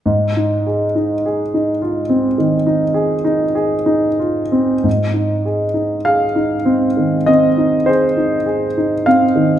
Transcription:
\new Staff \with { instrumentName = "Grand piano" } { \time 4/4 \key aes \major \tempo 4 = 50 << { r1 | r4 f''4 ees''8 c''4 f''8 | } \\ { aes,16 ees'16 aes'16 ees'16 aes'16 ees'16 f'16 c'16 ees16 ees'16 aes'16 ees'16 aes'16 ees'16 f'16 c'16 | aes,16 ees'16 aes'16 ees'16 aes'16 ees'16 c'16 ees16 c'16 ees'16 aes'16 ees'16 aes'16 ees'16 c'16 ees16 | } >> }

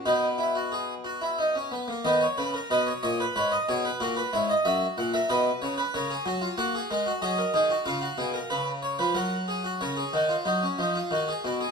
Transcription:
<<
  \new Staff \with { instrumentName = "Harpsichord" } { \time 3/4 \key b \major \tempo 4 = 92 << { b'2~ b'8 r8 | dis''16 cis''16 r16 ais'16 b'16 cis''16 dis''16 b'16 cis''16 dis''16 cis''16 b'16 | ais'16 b'16 cis''16 dis''16 e''8 fis''16 e''16 dis''8 cis''16 b'16 | cis''4 fis''4 dis''4 |
eis''2 fis''4 | cis''2. | } \\ { dis'8 e'16 fis'16 gis'8 fis'16 e'16 dis'16 cis'16 b16 ais16 | b8 b'8 dis''8 cis''8 b'8 gis'8 | fis'8 e'8 fis'8. ais'16 b'4 | ais'16 gis'16 fis'16 eis'16 fis'16 gis'16 ais'16 fis'16 gis'16 ais'16 gis'16 fis'16 |
eis'16 fis'16 gis'16 ais'16 b'8 cis''16 b'16 ais'8 gis'16 fis'16 | ais'16 gis'16 fis'16 eis'16 dis'16 cis'16 dis'16 eis'16 fis'16 gis'16 fis'16 gis'16 | } >> }
  \new Staff \with { instrumentName = "Harpsichord" } { \clef bass \time 3/4 \key b \major b,2~ b,8 r8 | dis8 cis8 b,8 ais,8 gis,8 b,8 | ais,8 gis,8 fis,8 ais,8 b,8 cis8 | cis8 fis8 ais8 gis8 fis8 dis8 |
cis8 b,8 cis8. eis16 fis4 | cis8 dis8 fis8 eis8 dis8 b,8 | }
>>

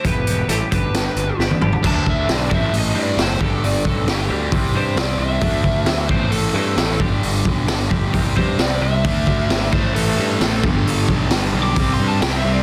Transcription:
<<
  \new Staff \with { instrumentName = "Lead electric guitar" } { \time 4/4 \key g \mixolydian \tempo 4 = 133 b'4 a'8 b'4. r4 | a''8 e''8 d''8 e''8 dis''8 d''8 c''8 a'8 | d''8 a'8 g'8 r4 c''8 d''8 e''8~ | e''4. c''8 a'8 a'4 r8 |
r2 r8 c''8 d''8 e''8~ | e''4. c''8 a'8 a'4 r8 | r4 \tuplet 3/2 { r4 d'''8~ d'''8 c'''8 a''8 g''8 e''8 d''8 } | }
  \new Staff \with { instrumentName = "Clean electric guitar" } { \clef bass \time 4/4 \key g \mixolydian <e, b, e g b g'>8 <e g b g'>8 <e g b g'>8 <g, d g b d' g'>4. <g, d g b d' g'>8 <g b d' g'>8 | <d fis a>8 <d fis>8 <d fis>8 <a, e c'>8 <a, e>8 <a, e c'>8 <a, e>8 <g, d g>8 | <g, d>8 <g, d>8 <g, d>8 <g, d g>8 <c e g>8 <c e g>8 <c e>8 <c e>8 | <d fis a>8 fis8 <d fis>8 <a, e c'>8 <a, e>8 <a, e c'>8 <a, e>8 <g, d g>8 |
<g, d>8 <g, d>8 <g, d>8 <g, d g>8 <c g c'>8 <c g c'>8 <c g>8 <c g>8 | r1 | r1 | }
  \new Staff \with { instrumentName = "Distorted electric guitar" } { \clef bass \time 4/4 \key g \mixolydian r1 | <d a d'>4. <a, e a>2 <g, d g>8~ | <g, d g>4. <g, d g>8 <c g c'>2 | <d a d'>4. <a, e a>2 <g, d g>8~ |
<g, d g>4. <g, d g>8 <c g c'>2 | <d a d'>4. <a, e a>2 <g, d g>8~ | <g, d g>4. <g, d g>8 <c g c'>2 | }
  \new Staff \with { instrumentName = "Distorted electric guitar" } { \clef bass \time 4/4 \key g \mixolydian r1 | r1 | r1 | r1 |
r1 | <d a d'>4. <a, e a>4. <a, e a>8 <g, d g>8~ | <g, d g>4 <g, d g>4 <c g c'>4. <c g c'>8 | }
  \new Staff \with { instrumentName = "Picked electric bass" } { \clef bass \time 4/4 \key g \mixolydian e,,8 e,,8 a,,8 g,,8 g,,8 g,,8 g,,8 g,,8 | d,8 d,8 b,,8 a,,8 a,,8 g,8 fis,,8 g,,8 | g,,8 b,,8 g,,8 d,8 c,8 g,8 c,8 c,8 | d,8 d,8 d,8 a,,8 a,,8 g,8 a,,8 g,,8 |
g,,8 b,,8 g,,8 g,,8 c,8 g,8 c,8 c,8 | d,8 d,8 gis,,8 a,,8 a,,8 g,8 a,,8 g,,8 | g,,8 b,,8 g,,8 b,,8 c,8 g,8 c,8 c,8 | }
  \new DrumStaff \with { instrumentName = "Drums" } \drummode { \time 4/4 <hh bd>8 hh8 hh8 <hh bd>8 <hh sn>8 hh8 sn16 tommh16 toml16 tomfh16 | <cymc bd>8 bd8 <hho sn>8 bd8 hho4 <hho sn>8 bd8 | hho8 bd8 <hho sn>4 <hho bd>4 <hho sn>4 | <hho bd>8 bd8 <hho sn>8 bd8 hho4 <hho sn>8 bd8 |
hho8 bd8 <hho sn>8 bd8 <hho bd>8 bd8 <hho sn>4 | <hho bd>8 bd8 <hho sn>8 bd8 hho4 <hho sn>8 bd8 | hho8 bd8 <hho sn>4 <hho bd>4 <hho sn>4 | }
>>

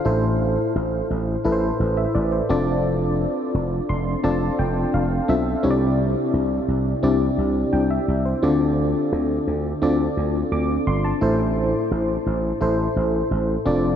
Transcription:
<<
  \new Staff \with { instrumentName = "FM electric piano" } { \time 4/4 \key a \minor \tempo 4 = 86 << { r2 r8. e''16 d''16 c''8 r16 | r4. c'''8 a''8 g''8 f''8 e''8 | r2. g''16 e''8 c''16~ | c''16 r2 r8. d'''8 c'''16 a''16~ |
a''16 r2. r8. | } \\ { <a, e' a' c''>4. r8 <e' a' b' c''>4 r8 <c' d' f' a' d''>8~ | <c' d' f' a' d''>4 r4 <c' d' f' a' d''>4 r8 <c' d' f' a' e''>8 | <c c' d' e' g' des'' d''>4. r8 <c' d' e' g' d''>4 r4 | <d c' d' f' a' d''>4. r8 <c' d' f' a' d''>4 r4 |
<a, e' a' c''>4. r8 <e' a' c''>4 r8 <c' d' f' a' d''>8 | } >> }
  \new Staff \with { instrumentName = "Slap bass" } { \clef bass \time 4/4 \key a \minor a,,4 a,,8 a,,8 a,,8 a,,8 a,,8 f,,8~ | f,,4 f,,8 f,,8 f,,8 f,,8 f,,8 b,,8 | c,4 c,8 c,8 c,8 c,8 c,8 c,8 | d,4 d,8 d,8 d,8 d,8 d,8 g,,8 |
a,,4 a,,8 a,,8 a,,8 a,,8 a,,8 f,,8 | }
>>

